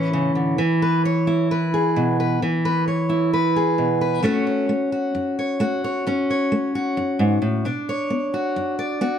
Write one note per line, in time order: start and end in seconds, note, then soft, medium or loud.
0.00 0.56 A2 medium
0.00 0.58 E3 medium
0.00 0.56 C#4 soft
0.00 1.27 E4 soft
0.00 0.82 B4 soft
0.13 0.35 C#3 medium
0.35 0.58 D3 soft
0.58 2.41 E3 medium
0.82 1.05 B4 medium
1.05 1.50 C#5 medium
1.27 2.38 E4 medium
1.51 2.19 B4 medium
1.74 2.39 G#4 soft
1.96 2.39 B2 medium
2.20 2.39 B4 medium
2.42 4.23 E3 medium
2.65 2.87 B4 soft
2.88 3.33 C#5 soft
3.09 4.21 E4 soft
3.33 4.00 B4 medium
3.56 4.21 G#4 soft
3.78 4.21 B2 medium
4.01 4.21 B4 medium
4.23 4.64 F#2 medium
4.23 4.69 A3 medium
4.23 6.03 C#4 medium
4.23 4.92 F#4 medium
4.23 4.46 C#5 medium
4.47 5.38 C#5 soft
4.69 5.10 A3 medium
4.92 5.60 F#4 soft
5.15 5.56 F#2 medium
5.39 5.83 C#5 soft
5.60 6.01 A3 medium
5.60 6.75 F#4 medium
5.84 6.04 C#5 medium
6.07 6.47 F#2 medium
6.07 7.63 C#4 medium
6.30 7.63 C#5 medium
6.52 6.93 A3 medium
6.75 7.63 F#4 medium
6.97 7.19 F#2 medium
7.19 7.41 G#2 medium
7.42 7.65 A2 medium
7.65 8.06 B2 medium
7.65 9.19 D4 medium
7.89 8.78 C#5 medium
8.10 8.51 B3 medium
8.34 9.00 F#4 medium
8.56 8.97 F#2 medium
8.79 9.19 D5 medium
9.01 9.19 B3 medium
9.01 9.19 F#4 medium